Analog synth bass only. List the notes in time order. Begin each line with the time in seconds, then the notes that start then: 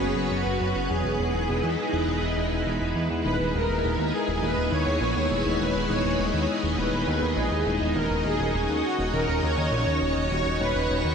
0.01 F#1
0.16 F#1
0.31 F#1
0.46 F#1
0.60 F#1
0.75 F#1
0.90 E1
1.05 E1
1.19 E1
1.34 E1
1.48 E1
1.63 E2
1.93 E1
2.07 E1
2.22 E1
2.36 E1
2.51 E1
2.66 E1
2.81 E1
2.95 E2
3.10 E2
3.25 D#1
3.39 D#1
3.54 D#1
3.69 D#1
3.84 D#1
3.98 D#2
4.28 D#1
4.42 D#1
4.57 D#1
4.72 D#2
4.86 D#2
5.01 A#1
5.16 D#2
5.30 D#1
5.45 D#1
5.60 D#1
5.75 D#1
5.89 D#1
6.04 D#1
6.19 D#1
6.34 D#2
6.63 D#1
6.78 D#1
6.92 D#1
7.07 D#2
7.22 D#2
7.37 A#1
7.51 D#2
7.66 D#1
7.81 D#1
7.95 D#1
8.10 D#1
8.25 D#1
8.39 D#1
8.54 D#1
8.69 D#2
8.98 D#1
9.13 D#1
9.28 D#1
9.43 D#2
9.57 D#2
9.72 A#1
9.87 D#2
10.01 D#1
10.16 D#1
10.31 D#1
10.46 D#1
10.60 D#1
10.75 D#1
10.90 D#1
11.04 D#2